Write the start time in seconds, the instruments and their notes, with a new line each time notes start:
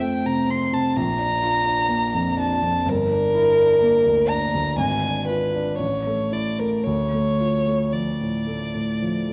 Already playing: grand piano F2 C4 F4
0.00 grand piano A3, violin G5
0.25 grand piano C3, violin A#5
0.47 grand piano C4, violin C6
0.72 grand piano C3, violin A5
0.96 grand piano A#1, violin A#5
1.19 grand piano D4
1.43 grand piano F4
1.66 grand piano D4
1.89 grand piano A#3
2.14 grand piano F2
2.37 grand piano D4, violin A5
2.62 grand piano F2
2.86 grand piano G1, violin A#4
3.10 grand piano D4
3.35 grand piano E4
3.60 grand piano D4
3.81 grand piano A#3
4.06 grand piano D2
4.29 grand piano D4, violin A#5
4.54 grand piano D2
4.77 grand piano G#1, violin G#5
5.04 grand piano D4
5.28 grand piano F4, violin B4
5.54 grand piano D4
5.79 grand piano A1, violin C#5
6.07 grand piano A3
6.32 grand piano E4, violin D5
6.59 grand piano A3, violin A#4
6.84 grand piano D2, violin C#5
7.13 grand piano A3
7.40 grand piano F4
7.67 grand piano A3
7.93 grand piano F3, violin D5
8.21 grand piano A2
8.47 grand piano A3
8.75 grand piano A2
9.02 grand piano F3
9.29 grand piano A3